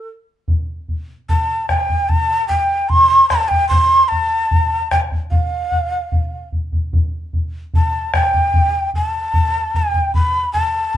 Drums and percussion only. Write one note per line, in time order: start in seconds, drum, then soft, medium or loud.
0.48 bombo low medium
0.88 bombo low medium
1.29 bombo low medium
1.69 bombo rim soft
1.69 bombo low medium
1.89 bombo low medium
2.09 bombo low medium
2.50 bombo low soft
2.90 bombo low medium
3.30 bombo rim soft
3.30 bombo low soft
3.51 bombo low soft
3.71 bombo low medium
4.12 bombo low soft
4.51 bombo low medium
4.91 bombo rim medium
4.91 bombo low medium
5.12 bombo low medium
5.31 bombo low medium
5.72 bombo low soft
6.12 bombo low medium
6.52 bombo low medium
6.73 bombo low medium
6.93 bombo low medium
7.33 bombo low medium
7.74 bombo low medium
8.14 bombo rim medium
8.14 bombo low medium
8.34 bombo low medium
8.54 bombo low medium
8.94 bombo low medium
9.34 bombo low medium
9.74 bombo low medium
9.94 bombo low medium
10.14 bombo low medium
10.54 bombo low soft